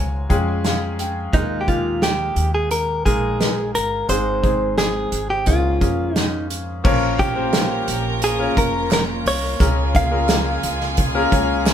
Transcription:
Already playing: upright bass C#2, grand piano G#2 G#3 C#4 F4 G#4 A#4 G#5 A#5, clean electric guitar C#5
0.29 upright bass F2, grand piano G#3 C#4 F4 G#4 G5, kick, closed hi-hat
0.48 grand piano G#5
0.64 grand piano F5, snare, closed hi-hat
0.99 grand piano G5, closed hi-hat
1.33 upright bass D#2, grand piano A#2 G#3 A#3 D#4 G#4, clean electric guitar D#4, kick, closed hi-hat
1.61 clean electric guitar G4
1.68 grand piano G#3 A#3 D#4 G4, clean electric guitar F4, kick, closed hi-hat
2.02 clean electric guitar G4, snare, closed hi-hat
2.36 upright bass D#2, closed hi-hat
2.55 clean electric guitar G#4
2.71 clean electric guitar A#4, closed hi-hat
3.06 upright bass A#1, grand piano G#3 A#3 D#4 A#4, clean electric guitar G#4, kick, closed hi-hat
3.40 snare, closed hi-hat
3.74 upright bass G1, clean electric guitar A#4, closed hi-hat
4.08 upright bass G#1, grand piano G#2 D#3 G#3 C4 D#4 G#4, clean electric guitar C5, closed hi-hat
4.43 grand piano G#3 C4 D#4 G#4, kick, closed hi-hat
4.78 clean electric guitar G#4, snare, closed hi-hat
5.12 upright bass G#1, closed hi-hat
5.30 clean electric guitar G4
5.46 upright bass C#2, grand piano G#2 A#3 C#4 F4 G#4, clean electric guitar F4, kick, closed hi-hat
5.81 upright bass F2, grand piano A#3 C#4 F4 G#4, kick, closed hi-hat
6.16 clean electric guitar D#4, snare, closed hi-hat
6.50 closed hi-hat
6.84 upright bass A#1, grand piano A#2 F3 A#3 C#4 F4 A#4 C#5, string section A#3 C#4 F4, violin section A#4 A#5, kick, crash
7.19 clean electric guitar G4, kick, closed hi-hat
7.36 grand piano A#3 C#4 F4 A#4 C5
7.53 snare, clap, closed hi-hat
7.88 upright bass A#1, closed hi-hat
8.22 clean electric guitar G#4, closed hi-hat
8.40 grand piano A#3 C#4 F4 A#4 C#5
8.57 upright bass F1, clean electric guitar A#4, kick, closed hi-hat
8.91 clean electric guitar A#4, snare, clap, closed hi-hat
9.26 upright bass C2, clean electric guitar C#5, open hi-hat
9.60 upright bass C#2, grand piano C#3 A#3 C#4 F4 G#4 A#4, string section C#3 G#3, violin section G#4 G#5, kick, closed hi-hat
9.95 clean electric guitar F5, kick, closed hi-hat
10.11 grand piano A#3 C#4 F4 G#4 A#4
10.29 snare, clap, closed hi-hat
10.63 upright bass C#2, closed hi-hat
10.80 snare
10.97 kick, closed hi-hat
11.15 grand piano A#3 C#4 F4 G#4 A#4
11.32 upright bass C#2, grand piano C#5, kick, closed hi-hat
11.43 grand piano F5
11.66 grand piano G#5, snare, clap, closed hi-hat

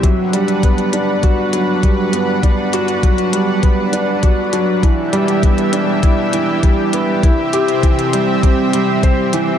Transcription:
0.03 double bass section G1, felt piano F#3, analog synth pad D4 B4 F#5, kick, closed hi-hat
0.33 felt piano G3, closed hi-hat
0.48 closed hi-hat
0.63 felt piano B3, kick, closed hi-hat
0.78 closed hi-hat
0.93 felt piano D4, closed hi-hat
1.23 felt piano F#4, kick, closed hi-hat
1.53 felt piano F#3, closed hi-hat
1.83 felt piano G3, kick, closed hi-hat
2.13 felt piano B3, closed hi-hat
2.43 felt piano D4, kick, closed hi-hat
2.73 felt piano F#4, closed hi-hat
2.88 closed hi-hat
3.03 felt piano F#3, kick, closed hi-hat
3.18 closed hi-hat
3.33 felt piano G3, closed hi-hat
3.63 felt piano B3, kick, closed hi-hat
3.93 felt piano D4, closed hi-hat
4.23 felt piano F#4, kick, closed hi-hat
4.53 felt piano F#3, closed hi-hat
4.83 double bass section E1, felt piano E3, analog synth pad E3 G4 E5, kick, closed hi-hat
5.13 felt piano G3, closed hi-hat
5.28 closed hi-hat
5.43 felt piano B3, kick, closed hi-hat
5.58 closed hi-hat
5.73 felt piano D4, closed hi-hat
6.03 felt piano E4, kick, closed hi-hat
6.33 felt piano E3, closed hi-hat
6.63 felt piano G3, kick, closed hi-hat
6.93 felt piano B3, closed hi-hat
7.23 double bass section C2, analog synth pad C3 C4 E5, felt piano E4, kick, closed hi-hat
7.53 felt piano G4, closed hi-hat
7.68 closed hi-hat
7.83 felt piano E3, kick, closed hi-hat
7.99 closed hi-hat
8.13 felt piano G3, closed hi-hat
8.43 felt piano C4, kick, closed hi-hat
8.73 felt piano G3, closed hi-hat
9.03 felt piano C5, kick, closed hi-hat
9.33 felt piano E3, closed hi-hat

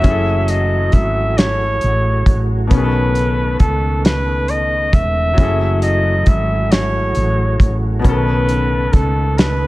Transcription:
Already playing: tonewheel organ A3, flugelhorn E5
0.00 grand piano F#3 C#4, kick, closed hi-hat
0.05 fretless electric bass F#1, tonewheel organ E3 F#3 F#4, grand piano E4 G#4
0.10 grand piano A4
0.48 flugelhorn D#5, closed hi-hat
0.92 fretless electric bass G#1, flugelhorn E5, kick, closed hi-hat
1.38 flugelhorn C#5, snare, closed hi-hat
1.81 fretless electric bass A1, closed hi-hat
2.26 fretless electric bass A1, kick, closed hi-hat
2.67 grand piano B2 B3, tonewheel organ C#3 D#3 B3, flugelhorn B4, kick, closed hi-hat
2.71 fretless electric bass B1, grand piano D#3 C#4
2.77 grand piano G#4
2.84 grand piano A4
3.15 closed hi-hat
3.60 fretless electric bass C#2, flugelhorn A4, kick, closed hi-hat
4.05 flugelhorn B4, snare, closed hi-hat
4.48 flugelhorn D#5, closed hi-hat
4.93 fretless electric bass E1, flugelhorn E5, kick, closed hi-hat
5.33 grand piano F#3 C#4
5.38 fretless electric bass F#1, tonewheel organ E3 F#3 F#4, grand piano E4 G#4, kick, closed hi-hat
5.43 grand piano A4
5.82 flugelhorn D#5, closed hi-hat
6.26 fretless electric bass G#1, flugelhorn E5, kick, closed hi-hat
6.71 flugelhorn C#5, snare, closed hi-hat
7.15 fretless electric bass A1, closed hi-hat
7.60 fretless electric bass A1, kick, closed hi-hat
7.99 grand piano B2 B3
8.04 fretless electric bass B1, tonewheel organ C#3 D#3 A3 B3, grand piano D#3 C#4, flugelhorn B4, kick, closed hi-hat
8.09 grand piano A4
8.49 closed hi-hat
8.93 fretless electric bass C#2, flugelhorn A4, kick, closed hi-hat
9.38 flugelhorn B4, snare, closed hi-hat

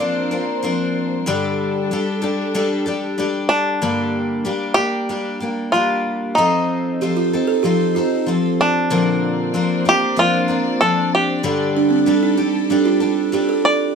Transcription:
Already playing: string section A#3 D4 C5, five-string banjo D5
0.00 twelve-string acoustic guitar F3 C4 D4 A#4
0.31 twelve-string acoustic guitar F3 C4 D4 A#4
0.63 twelve-string acoustic guitar F3 C4 D4 A#4
1.23 twelve-string acoustic guitar G2 D3 G3 G4, string section G3 D4 A4
1.28 twelve-string acoustic guitar D4 A4
1.91 twelve-string acoustic guitar G3 D4 G4 A4
2.22 twelve-string acoustic guitar G3 D4 G4 A4
2.55 twelve-string acoustic guitar G3 D4 G4 A4
2.86 twelve-string acoustic guitar G3 D4 G4 A4
3.18 twelve-string acoustic guitar G3 D4 G4 A4
3.49 five-string banjo D4
3.82 twelve-string acoustic guitar G2 D3 G3 A#3 D4 G4
4.45 twelve-string acoustic guitar G3 A#3 D4 G4
4.74 twelve-string acoustic guitar A#3 D4 G4, five-string banjo G4
4.79 twelve-string acoustic guitar G3
5.09 twelve-string acoustic guitar G3 A#3 D4 G4
5.40 twelve-string acoustic guitar G3 A#3 D4 G4
5.72 twelve-string acoustic guitar G3 A#3 D4 G4, five-string banjo F4
6.35 twelve-string acoustic guitar F3 C4 D#4 A4, five-string banjo D#4
7.01 twelve-string acoustic guitar F3 C4 D#4 A4, kalimba G4
7.17 kalimba F4
7.33 twelve-string acoustic guitar C4 D#4 A4
7.47 kalimba A4
7.63 twelve-string acoustic guitar F3 C4 D#4 A4, kalimba G4
7.95 twelve-string acoustic guitar C4 D#4 A4, kalimba F4
8.26 twelve-string acoustic guitar F3 C4 A4
8.61 five-string banjo D4
8.90 twelve-string acoustic guitar A#2 D3 F3 C4 D4 A#4, string section A#3 C5 D5
9.54 twelve-string acoustic guitar F3 C4 D4 A#4
9.85 twelve-string acoustic guitar F3 C4 D4 A#4, five-string banjo G4
10.16 twelve-string acoustic guitar F3 C4 D4 A#4, five-string banjo F4
10.48 twelve-string acoustic guitar F3 C4 D4 A#4
10.81 twelve-string acoustic guitar F3 C4 D4, five-string banjo A4
11.15 five-string banjo G4
11.43 twelve-string acoustic guitar G2 D3 G3 D4 G4 A4, string section G3 A4
11.77 kalimba D4
11.90 kalimba C4
12.06 twelve-string acoustic guitar G3 D4 G4 A4, kalimba D4
12.23 kalimba D#4
12.37 twelve-string acoustic guitar G3 G4 A4
12.70 twelve-string acoustic guitar G3 D4 G4 A4, kalimba D4
12.85 kalimba F4
13.00 twelve-string acoustic guitar G3 D4 G4 A4
13.32 twelve-string acoustic guitar G3 D4 G4 A4, kalimba G4
13.49 kalimba A4
13.65 five-string banjo D5

